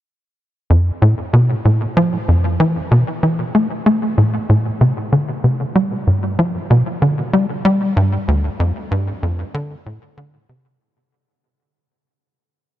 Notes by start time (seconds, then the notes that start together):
0.70 F2
1.02 A2
1.33 B2
1.65 A2
1.97 F3
2.28 F2
2.60 E3
2.91 B2
3.23 E3
3.55 A3
3.86 A3
4.18 A2
4.49 A2
4.81 C3
5.12 D3
5.44 C3
5.75 G3
6.07 G2
6.39 F3
6.70 B2
7.02 D3
7.33 G3
7.65 G3
7.97 G2
8.28 D2
8.60 F2
8.91 G2
9.23 F2
9.54 D3
9.86 A2
10.17 D3
10.49 C3